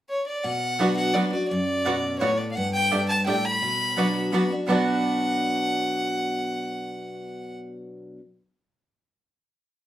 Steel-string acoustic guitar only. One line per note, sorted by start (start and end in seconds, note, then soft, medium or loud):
0.44 1.12 B2 medium
0.79 1.13 F#3 medium
0.79 1.14 B3 medium
0.79 1.14 D4 loud
0.79 1.14 F#4 medium
1.15 1.32 F#3 medium
1.15 1.33 B3 medium
1.15 1.33 D4 medium
1.15 1.32 F#4 medium
1.33 1.51 D4 soft
1.33 1.50 F#4 medium
1.51 2.18 F#2 medium
1.86 2.20 B2 medium
2.21 2.55 A2 medium
2.57 2.91 G2 medium
2.92 3.25 G2 medium
3.27 3.61 A2 loud
3.62 4.29 B2 medium
3.97 4.31 F#3 medium
3.97 4.31 B3 medium
3.97 4.32 D4 medium
3.97 4.32 F#4 medium
4.32 4.50 F#3 medium
4.32 4.50 B3 medium
4.32 4.50 D4 medium
4.32 4.49 F#4 loud
4.51 4.68 D4 medium
4.51 4.67 F#4 medium
4.68 8.18 B2 medium
4.68 8.18 F#3 medium
4.68 8.19 B3 medium
4.68 8.20 D4 medium
4.68 8.20 F#4 loud